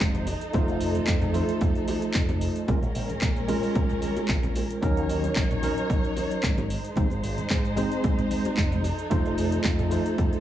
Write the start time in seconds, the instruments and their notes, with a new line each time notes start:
Already playing: string section G#3 D#4 C5, tine electric piano G#3 C4 D#4 C5
0.00 picked electric bass F1, kick, clap, closed hi-hat, cabasa, shaker
0.15 closed hi-hat, high conga, cabasa, shaker
0.27 string section F3 A4, open hi-hat, high bongo, shaker
0.41 closed hi-hat, cabasa, shaker
0.53 picked electric bass F1, tine electric piano A3 D#4 F4 C5, kick, closed hi-hat, high conga, cabasa, shaker
0.68 picked electric bass F1, closed hi-hat, cabasa, shaker
0.80 picked electric bass F1, open hi-hat, shaker
0.95 closed hi-hat, high conga, cabasa, shaker
1.07 picked electric bass F2, kick, clap, closed hi-hat, cabasa, shaker
1.21 closed hi-hat, low conga, cabasa, shaker
1.33 tine electric piano A3 D#4 F4 C5, open hi-hat, high conga, shaker
1.49 closed hi-hat, cabasa, shaker
1.61 picked electric bass F2, kick, closed hi-hat, cabasa, shaker
1.75 closed hi-hat, cabasa, shaker
1.88 open hi-hat, high bongo, high conga, shaker
2.02 closed hi-hat, cabasa, shaker
2.14 picked electric bass F1, kick, clap, closed hi-hat, cabasa, shaker
2.29 closed hi-hat, high bongo, high conga, cabasa, shaker
2.41 open hi-hat, shaker
2.56 closed hi-hat, cabasa, shaker
2.68 picked electric bass A#1, tine electric piano G#3 C#4 F4 A#4, string section G#3 C#4 A#4, kick, closed hi-hat, high conga, cabasa, shaker
2.82 picked electric bass A#1, closed hi-hat, high bongo, cabasa, shaker
2.95 picked electric bass A#1, open hi-hat, shaker
3.09 muted picked electric bass stroke, closed hi-hat, high conga, cabasa, shaker
3.21 picked electric bass A#2, kick, clap, closed hi-hat, cabasa, shaker
3.36 closed hi-hat, cabasa, shaker
3.48 tine electric piano G#3 C#4 F4 A#4, open hi-hat, high bongo, high conga, shaker
3.63 open hi-hat, cabasa, shaker
3.75 picked electric bass A#2, kick, closed hi-hat, cabasa, shaker
3.89 closed hi-hat, low conga, cabasa, shaker
4.02 open hi-hat, high conga, shaker
4.17 muted picked electric bass stroke, closed hi-hat, high bongo, cabasa, shaker
4.28 picked electric bass A#1, kick, clap, closed hi-hat, cabasa, shaker
4.43 closed hi-hat, high conga, cabasa, shaker
4.55 open hi-hat, high bongo, shaker
4.70 closed hi-hat, cabasa, shaker
4.81 picked electric bass D#2, tine electric piano F#3 C#4 D#4 A#4, string section F#3 D#4 C#5, kick, closed hi-hat, high conga, cabasa, shaker
4.97 picked electric bass D#2, closed hi-hat, cabasa, shaker
5.09 picked electric bass D#2, open hi-hat, shaker
5.24 closed hi-hat, high conga, cabasa, shaker
5.36 picked electric bass A#1, kick, clap, closed hi-hat, cabasa, shaker
5.51 closed hi-hat, low conga, cabasa, shaker
5.62 tine electric piano F#3 C#4 D#4 A#4, open hi-hat, high conga, shaker
5.77 closed hi-hat, cabasa, shaker
5.90 picked electric bass A#1, kick, closed hi-hat, cabasa, shaker
6.03 closed hi-hat, cabasa, shaker
6.17 open hi-hat, high bongo, high conga, shaker
6.30 closed hi-hat, cabasa, shaker
6.43 picked electric bass G#1, kick, clap, closed hi-hat, cabasa, shaker
6.58 closed hi-hat, high bongo, high conga, cabasa, shaker
6.70 string section G#3 D#4 C5, open hi-hat, shaker
6.85 closed hi-hat, cabasa, shaker
6.96 picked electric bass G#1, tine electric piano G#3 C4 D#4 C5, kick, closed hi-hat, high conga, cabasa, shaker
7.10 picked electric bass G#1, closed hi-hat, high bongo, cabasa, shaker
7.23 picked electric bass G#1, open hi-hat, shaker
7.38 muted picked electric bass stroke, closed hi-hat, high conga, cabasa, shaker
7.50 picked electric bass G#2, kick, clap, closed hi-hat, cabasa, shaker
7.65 closed hi-hat, cabasa, shaker
7.76 tine electric piano G#3 C4 D#4 C5, open hi-hat, high bongo, high conga, shaker
7.92 closed hi-hat, cabasa, shaker
8.03 picked electric bass G#2, kick, closed hi-hat, cabasa, shaker
8.19 closed hi-hat, low conga, cabasa, shaker
8.31 open hi-hat, high conga, shaker
8.45 muted picked electric bass stroke, closed hi-hat, high bongo, cabasa, shaker
8.57 picked electric bass F1, kick, clap, closed hi-hat, cabasa, shaker
8.72 closed hi-hat, high conga, cabasa, shaker
8.84 string section F3 A4, open hi-hat, high bongo, shaker
8.98 closed hi-hat, cabasa, shaker
9.10 picked electric bass F1, tine electric piano A3 D#4 F4 C5, kick, closed hi-hat, high conga, cabasa, shaker
9.25 picked electric bass F1, closed hi-hat, cabasa, shaker
9.38 picked electric bass F1, open hi-hat, shaker
9.52 closed hi-hat, high conga, cabasa, shaker
9.64 picked electric bass F2, kick, clap, closed hi-hat, cabasa, shaker
9.79 closed hi-hat, low conga, cabasa, shaker
9.90 tine electric piano A3 D#4 F4 C5, open hi-hat, high conga, shaker
10.06 closed hi-hat, cabasa, shaker
10.18 picked electric bass F2, kick, closed hi-hat, cabasa, shaker
10.33 closed hi-hat, cabasa, shaker